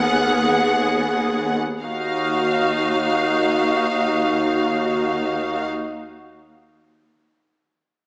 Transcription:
0.00 1.58 D#2 soft
0.00 1.58 B3 medium
0.00 1.58 G#4 soft
0.00 1.58 F#5 medium
0.00 1.39 D#6 soft
0.00 0.60 F6 soft
0.00 1.39 F#6 soft
1.81 5.65 D#2 soft
1.81 5.66 D#2 soft
1.81 5.65 D#4 soft
1.81 5.65 F#4 soft
1.81 5.66 F5 soft
1.81 4.47 D#6 soft
1.81 3.23 F6 soft
1.81 2.93 A#6 soft
3.23 3.69 F#6 soft

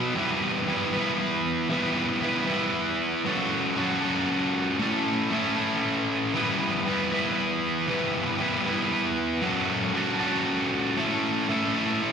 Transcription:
0.00 0.15 B2 medium
0.00 0.15 F#3 medium
0.00 0.15 B3 loud
0.15 1.69 E3 loud
0.15 0.66 G3 loud
0.15 0.67 B3 loud
0.15 0.69 E4 loud
0.15 0.70 B4 loud
0.67 1.19 G3 medium
0.67 0.95 B3 medium
0.67 0.94 E4 medium
0.67 0.92 B4 medium
0.93 1.70 B3 medium
0.93 1.71 E4 medium
0.93 1.72 B4 medium
1.70 2.48 E3 loud
1.70 2.20 G3 medium
1.70 2.21 B3 loud
1.70 2.22 E4 loud
1.70 2.23 B4 loud
2.21 2.73 G3 medium
2.21 2.49 B3 medium
2.21 2.48 E4 medium
2.21 2.46 B4 loud
2.47 3.25 B3 medium
2.47 3.25 E4 medium
2.47 3.23 B4 medium
3.25 3.75 F#3 loud
3.25 3.77 C#4 loud
3.25 3.77 F#4 loud
3.25 3.79 A4 loud
3.76 4.28 F#3 medium
3.76 4.03 C#4 medium
3.76 4.02 F#4 medium
3.76 4.00 A4 medium
4.01 4.79 C#4 medium
4.01 4.79 F#4 medium
4.01 4.77 A4 medium
4.79 5.30 A3 loud
4.79 5.31 C#4 loud
4.79 5.33 E4 loud
4.79 5.33 A4 loud
5.31 5.83 A3 medium
5.31 5.58 C#4 medium
5.31 5.57 E4 medium
5.31 5.55 A4 medium
5.56 6.34 C#4 medium
5.56 6.36 E4 medium
5.56 6.32 A4 medium
6.34 7.87 E3 medium
6.34 6.86 G3 medium
6.34 6.87 B3 loud
6.34 6.88 E4 loud
6.34 6.88 B4 loud
6.86 7.37 G3 medium
6.86 7.14 B3 loud
6.86 7.13 E4 medium
6.86 7.11 B4 medium
7.12 7.88 B3 medium
7.12 7.89 E4 medium
7.12 7.90 B4 medium
7.88 8.65 E3 loud
7.88 8.37 G3 loud
7.88 8.38 B3 loud
7.88 8.39 E4 loud
7.88 8.40 B4 loud
8.38 8.91 G3 medium
8.38 8.67 B3 medium
8.38 8.66 E4 medium
8.38 8.64 B4 medium
8.65 9.43 B3 medium
8.65 9.42 E4 medium
8.65 9.41 B4 medium
9.42 9.92 F#3 loud
9.42 9.95 C#4 loud
9.42 9.95 F#4 loud
9.42 9.97 A4 loud
9.94 10.46 F#3 medium
9.94 10.21 C#4 medium
9.94 10.20 F#4 medium
9.94 10.18 A4 medium
10.19 10.97 C#4 medium
10.19 10.96 F#4 medium
10.19 10.96 A4 medium
10.97 11.47 A3 medium
10.97 11.48 C#4 loud
10.97 11.49 E4 loud
10.97 11.51 A4 loud
11.49 12.01 A3 medium
11.49 11.76 C#4 medium
11.49 11.75 E4 medium
11.49 11.73 A4 medium
11.74 12.12 C#4 medium
11.74 12.12 E4 medium
11.74 12.12 A4 medium

